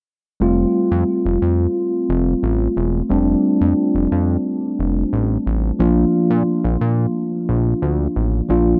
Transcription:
0.40 analog synth bass F1, tine electric piano G3 A3 C4 F4
0.91 analog synth bass F2
1.25 analog synth bass F1
1.42 analog synth bass F2
2.09 analog synth bass F1
2.43 analog synth bass A1
2.77 analog synth bass E1
3.09 analog synth bass F1, tine electric piano G3 A3 C4 D4
3.61 analog synth bass F2
3.95 analog synth bass F1
4.12 analog synth bass F2
4.79 analog synth bass F1
5.13 analog synth bass A1
5.46 analog synth bass A1
5.79 analog synth bass A#1, tine electric piano F3 A#3 D4 F4
6.30 analog synth bass A#2
6.64 analog synth bass A#1
6.81 analog synth bass A#2
7.49 analog synth bass A#1
7.82 analog synth bass D2
8.16 analog synth bass A1
8.49 analog synth bass A#1, tine electric piano F3 A#3 D4 F4

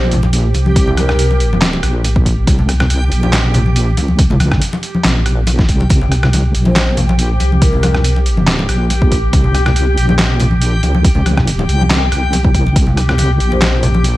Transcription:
Already playing: wobble bass A#1, synth texture G4, ney C5
0.11 closed hi-hat, low conga
0.23 muted conga, high conga
0.33 closed hi-hat
0.54 wobble bass C2, closed hi-hat, muted conga
0.66 ney G4, high conga
0.76 kick, closed hi-hat
0.87 low conga
0.97 ney A#4, cross-stick, closed hi-hat, muted conga, high conga
1.09 cross-stick, low conga
1.19 closed hi-hat
1.31 muted conga
1.40 closed hi-hat
1.53 high conga
1.62 snare, clap, closed hi-hat
1.73 muted conga
1.83 wobble bass A#1, cross-stick, closed hi-hat
2.04 closed hi-hat, muted conga
2.16 kick
2.26 kick, closed hi-hat
2.47 wobble bass C2, kick, closed hi-hat, muted conga
2.59 low conga
2.69 cross-stick, closed hi-hat
2.80 cross-stick, muted conga, low conga
2.90 closed hi-hat
3.12 wobble bass A#1, closed hi-hat
3.23 muted conga, high conga
3.33 cross-stick, snare, clap, closed hi-hat
3.54 closed hi-hat, muted conga, low conga
3.66 high conga
3.76 closed hi-hat
3.97 wobble bass C#2, closed hi-hat, muted conga
4.08 high conga
4.19 kick, closed hi-hat
4.30 muted conga, low conga
4.40 cross-stick, closed hi-hat, high conga
4.51 kick, cross-stick, low conga
4.61 closed hi-hat
4.73 muted conga
4.83 closed hi-hat
4.95 high conga
5.04 wobble bass A#1, snare, clap, closed hi-hat, muted conga
5.26 cross-stick, closed hi-hat
5.47 closed hi-hat, muted conga
5.59 kick, snare
5.69 wobble bass C2, kick, closed hi-hat
5.80 muted conga
5.90 wobble bass C2, synth texture G4, kick, closed hi-hat, muted conga
6.01 low conga
6.12 cross-stick, closed hi-hat
6.23 cross-stick, low conga
6.33 closed hi-hat, muted conga
6.54 wobble bass A#1, closed hi-hat
6.65 ney C5, muted conga, high conga
6.76 cross-stick, snare, clap, closed hi-hat
6.97 closed hi-hat, low conga
7.09 muted conga, high conga
7.19 closed hi-hat
7.40 wobble bass C2, closed hi-hat, muted conga
7.52 high conga
7.62 ney A#4, kick, closed hi-hat
7.73 low conga
7.83 cross-stick, closed hi-hat, muted conga, high conga
7.94 cross-stick, low conga
8.04 closed hi-hat
8.16 muted conga
8.26 closed hi-hat
8.37 high conga
8.47 snare, clap, closed hi-hat
8.59 muted conga
8.69 wobble bass A#1, cross-stick, closed hi-hat
8.90 closed hi-hat, muted conga
9.02 kick
9.12 kick, closed hi-hat
9.33 wobble bass C2, kick, closed hi-hat, muted conga
9.44 low conga
9.54 cross-stick, closed hi-hat
9.66 cross-stick, muted conga, low conga
9.76 closed hi-hat
9.97 wobble bass A#1, closed hi-hat
10.09 muted conga, high conga
10.19 cross-stick, snare, clap, closed hi-hat
10.40 closed hi-hat, muted conga, low conga
10.51 high conga
10.62 closed hi-hat
10.83 wobble bass C#2, closed hi-hat, muted conga
10.95 high conga
11.04 kick, closed hi-hat
11.15 muted conga, low conga
11.26 cross-stick, closed hi-hat, high conga
11.37 kick, cross-stick, low conga
11.47 closed hi-hat
11.59 muted conga
11.69 wobble bass C2, closed hi-hat
11.81 high conga
11.90 snare, clap, closed hi-hat, muted conga
12.12 wobble bass C2, cross-stick, closed hi-hat
12.33 closed hi-hat, muted conga
12.45 kick
12.54 kick, closed hi-hat
12.67 muted conga
12.76 wobble bass C2, kick, closed hi-hat, muted conga
12.87 low conga
12.97 cross-stick, closed hi-hat
13.09 cross-stick, low conga
13.18 closed hi-hat, muted conga
13.40 wobble bass A#1, closed hi-hat
13.52 ney C5, muted conga, high conga
13.62 cross-stick, snare, clap, closed hi-hat
13.83 closed hi-hat, low conga
13.94 muted conga, high conga
14.04 closed hi-hat

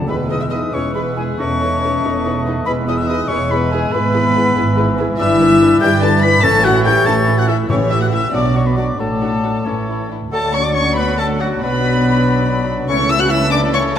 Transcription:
0.00 timpani D3
0.08 double bass section E1, cello section E2, bassoon G#3, french horn section B3, viola section E4 G#4, violin section B4, clarinet B4, oboe E5, flute B5
0.29 french horn section D#4, viola section E4 G#4, violin section B4 D#5, flute D#6
0.41 french horn section E4, violin section E5, flute E6
0.50 french horn section D#4, viola section E4 G#4, violin section B4 D#5, flute D#6
0.72 double bass section E1, cello section E2, french horn section C#4, viola section E4 G#4, violin section B4 C#5, flute C#6
0.94 french horn section B3, viola section E4 G#4, violin section B4, flute B5
1.15 french horn section G#3, viola section E4 G#4, violin section G#4 B4, flute G#5
1.38 double bass section E1, cello section E2, bassoon A3, french horn section C#4, viola section D#4 A4, violin section B4 C#5, oboe D#5, flute C#6
1.61 viola section D#4 A4, violin section B4
1.83 viola section D#4 A4, violin section B4
2.03 double bass section E1, cello section E2, viola section D#4 A4, violin section B4
2.25 viola section D#4 A4, violin section B4
2.46 viola section D#4 A4, violin section B4
2.66 double bass section E1, cello section E2, bassoon G#3, french horn section B3, viola section E4 G#4, violin section B4, clarinet B4, oboe E5, flute B5
2.87 french horn section D#4, viola section E4 G#4, violin section B4 D#5, flute D#6
2.98 french horn section E4, violin section E5, flute E6
3.07 french horn section D#4, viola section E4 G#4, violin section B4 D#5, flute D#6
3.28 double bass section E1, cello section E2, french horn section C#4, viola section E4 G#4, violin section B4 C#5, flute C#6
3.51 french horn section B3, viola section E4 G#4, violin section B4, flute B5
3.72 french horn section G#3, viola section E4 G#4, violin section G#4 B4, flute G#5
3.92 double bass section G#1, cello section G#2, bassoon E3, french horn section B3, viola section E4 G#4, violin section B4, flute B5
4.14 viola section E4 G#4, violin section B4
4.35 viola section E4 G#4, violin section B4
4.56 double bass section G#1, cello section G#2, viola section E4 G#4, violin section B4
4.77 viola section E4 G#4, violin section B4
4.98 viola section E4 G#4, violin section B4
5.19 double bass section G1, cello section G2, viola section D4 E4, french horn section E4, violin section B4 E5, clarinet B4, oboe D5, flute E6
5.40 viola section D4 E4, violin section B4
5.61 viola section D4 E4, violin section B4
5.81 double bass section G1, cello section G2, viola section D4 E4, french horn section G4, violin section B4 G5, flute G6
6.02 viola section D4 E4, french horn section A4, violin section B4 A5, flute A6
6.22 viola section D4 E4, french horn section B4, violin section B4 B5, flute B6
6.42 double bass section A1, cello section A2, timpani A2, bassoon E3, viola section C#4 E4, french horn section A4, violin section A4 A5, clarinet A4, oboe C#5, flute A6
6.63 viola section C#4 E4, french horn section F#4, violin section A4 F#5, flute F#6
6.84 viola section C#4 E4, french horn section G4, violin section A4 G5, flute G6
7.05 double bass section A1, cello section A2, viola section C#4 E4, french horn section A4, violin section A4 A5, flute A6
7.27 viola section C#4 E4, violin section A4
7.37 french horn section F#4, violin section F#5, flute F#6
7.48 viola section C#4 E4, french horn section E4, violin section A4 E5, flute E6
7.69 double bass section A1, cello section A2, timpani A2, bassoon E3, viola section A3 E4, french horn section C#4, clarinet G4, violin section G4 C#5, oboe E5, flute C#6
7.90 viola section A3 E4, french horn section E4, violin section G4 E5, flute E6
7.99 french horn section F#4, violin section F#5, flute F#6
8.10 viola section A3 E4, french horn section E4, violin section G4 E5, flute E6
8.32 double bass section B1, cello section B2, bassoon F#3, viola section F#3 D4, french horn section D4, clarinet F#4, violin section F#4 D5, oboe D5, flute D6
8.54 viola section F#3 D4, french horn section C#4, violin section F#4 C#5, flute C#6
8.65 french horn section B3, violin section B4, flute B5
8.76 viola section F#3 D4, french horn section D4, violin section F#4 D5, flute D6
8.99 double bass section A1, cello section A2, bassoon F#3, french horn section A3, viola section A3 D4, violin section F#4 A4, clarinet A4, oboe D5, flute A5
9.21 viola section A3 D4, violin section F#4
9.43 viola section A3 D4, violin section F#4
9.66 double bass section A1, cello section A2, bassoon E3, viola section C#4, violin section E4, clarinet A4, oboe C#5
9.88 viola section E4, violin section E4
10.10 viola section D4, violin section E4
10.31 cello section D2, double bass section D2, bassoon F#3, french horn section A3, viola section A3 D4, violin section F#4 A5, oboe A4, flute A4, clarinet D5
10.53 french horn section C#4, flute C#5, oboe C#5, violin section C#6
10.63 french horn section D4, flute D5, oboe D5, violin section D6
10.74 french horn section C#4, flute C#5, oboe C#5, violin section C#6
10.95 french horn section B3, flute B4, oboe B4, violin section B5
11.18 french horn section A3, flute A4, oboe A4, violin section A5
11.40 french horn section F#3, flute F#4, oboe F#4, violin section F#5
11.62 double bass section B1, cello section B2, bassoon F#3, french horn section B3, viola section D4, flute B4, oboe B4, clarinet D5, violin section B5
12.89 double bass section C#2, cello section C#3, bassoon E3, viola section A3 C#4, french horn section C#4, violin section E4 A4 C#6, clarinet A4, flute C#5, oboe C#5
13.09 french horn section E4, flute E5, oboe E5, violin section E6
13.20 french horn section F#4, flute F#5, oboe F#5, violin section F#6
13.30 french horn section E4, flute E5, oboe E5, violin section E6
13.51 french horn section D4, flute D5, oboe D5, violin section D6
13.73 french horn section C#4, oboe C#5, flute C#5, violin section C#6
13.94 french horn section A3, violin section A5

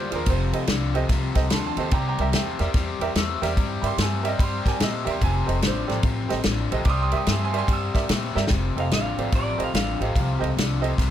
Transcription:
Already playing: upright bass D2, grand piano C5
0.11 upright bass D#2, overdriven electric guitar A#2 F3, grand piano F4 G#4 C5 D5, ride
0.15 grand piano A#4
0.26 upright bass F1, overdriven electric guitar F2 C3, grand piano C5, kick, ride
0.52 upright bass C2, grand piano G4 A4 C5 D#5, ride
0.67 upright bass C2, overdriven electric guitar F2 D3, snare, ride
0.94 overdriven electric guitar F2 C3, grand piano G4 A4 C5 D#5, ride
1.09 upright bass C2, overdriven electric guitar F2 C3, kick, snare, ride
1.34 upright bass C2, grand piano G4 A4 C5 D#5, kick, snare, ride
1.50 upright bass D#2, overdriven electric guitar F2 D3, grand piano A5 B5, snare, ride
1.54 grand piano C6
1.66 grand piano A5 C6
1.77 upright bass D#2, overdriven electric guitar F2 C3, grand piano G4 A4 C5 D#5 A5, ride
1.81 grand piano C6
1.91 upright bass C2, overdriven electric guitar C3 G3, grand piano G5 A#5, kick, ride
2.08 grand piano G5 A#5
2.18 upright bass C2, grand piano G4 A#4 D5 E5 G5 A#5, ride
2.33 upright bass E2, overdriven electric guitar C3 A3, grand piano E5 G5, snare, ride
2.59 upright bass E2, overdriven electric guitar C3 G3, grand piano G4 A#4 D5 E5, snare, ride
2.74 upright bass E2, overdriven electric guitar C3 G3, kick, snare, ride
2.99 upright bass E2, grand piano G4 A#4 D5 E5, ride
3.15 upright bass E2, overdriven electric guitar C3 A3, snare, ride
3.42 upright bass E2, overdriven electric guitar C3 G3, grand piano G4 A#4 D5 E5, snare, ride
3.57 upright bass G2, overdriven electric guitar C3 G3, kick, ride
3.82 upright bass G2, grand piano G4 A#4 D5 E5 B5, ride
3.86 grand piano C6
3.98 upright bass G2, overdriven electric guitar C3 A3, snare, ride
4.02 grand piano G#5
4.23 overdriven electric guitar C3 G3, grand piano G4 A#4 D5 E5, ride
4.28 grand piano D#5
4.39 upright bass G2, overdriven electric guitar C3 G3, grand piano B5, kick, ride
4.43 grand piano C6
4.65 upright bass G2, grand piano G4 A#4 D5 G5 G#5, kick, snare, ride
4.80 upright bass A#2, overdriven electric guitar C3 A3, grand piano D#5, snare, ride
5.04 upright bass E2, overdriven electric guitar C3 G3, grand piano G4 A#4 D5 E5, ride
5.11 grand piano C6
5.21 upright bass F1, overdriven electric guitar F2 C3, grand piano G#5, kick, ride
5.46 upright bass F1, grand piano G4 A4 C5 D#5, ride
5.62 upright bass A1, overdriven electric guitar F2 D3, snare, ride
5.67 grand piano C5
5.87 upright bass A1, overdriven electric guitar F2 C3, grand piano G4 A4 C5 D5, snare, ride
6.03 upright bass A1, overdriven electric guitar F2 C3, kick, ride
6.29 upright bass A1, grand piano G4 A4 C5 D#5, snare, ride
6.44 upright bass A1, overdriven electric guitar F2 D3, snare, ride
6.71 upright bass A#1, overdriven electric guitar F2 C3, grand piano G4 A4 C5 D#5, ride
6.85 upright bass C2, overdriven electric guitar C3 G3, grand piano D6, kick, ride
6.89 grand piano C6 D#6
7.02 grand piano C6 D#6
7.12 upright bass G2, grand piano G4 A#4 D5 E5 C6, ride
7.16 grand piano D#6
7.27 upright bass G2, overdriven electric guitar C3 A3, grand piano G#5, snare, ride
7.31 grand piano C6
7.44 grand piano G#5 C6
7.52 overdriven electric guitar C3 G3, grand piano G4 A#4 D5 E5, ride
7.58 grand piano G#5 C6
7.68 upright bass G2, overdriven electric guitar C3 G3, kick, ride
7.73 grand piano E6
7.94 upright bass G2, grand piano G4 A#4 D5 E5, kick, snare, ride
8.09 upright bass A#2, overdriven electric guitar C3 A3, snare, ride
8.35 upright bass G2, overdriven electric guitar C3 G3, grand piano G4 A#4 D5 E5, snare
8.47 upright bass F1, overdriven electric guitar F2 C3, kick, snare, ride
8.76 upright bass F1, grand piano G4 A4 C5 D#5, clean electric guitar F5, ride
8.91 upright bass A1, overdriven electric guitar F2 D3, clean electric guitar F5, snare, ride
9.18 upright bass A1, overdriven electric guitar F2 C3, grand piano G4 A4 C5 D5, ride
9.32 upright bass A1, overdriven electric guitar F2 C3, clean electric guitar D5, kick, ride
9.58 upright bass A1, grand piano G4 A4 C5 D#5, ride
9.64 clean electric guitar F5
9.74 upright bass A1, overdriven electric guitar F2 D3, clean electric guitar F5, snare, ride
10.00 upright bass A1, overdriven electric guitar F2 C3, grand piano G4 A4 C5 D#5, ride
10.15 upright bass C2, overdriven electric guitar F2 C3, kick, ride
10.39 upright bass C2, grand piano G4 A4 C5 D#5
10.44 ride
10.57 upright bass C2, overdriven electric guitar F2 D3, snare, ride
10.81 overdriven electric guitar F2 C3, grand piano G4 A4 C5 D#5, ride
10.98 upright bass C2, overdriven electric guitar F2 C3, kick, snare, ride

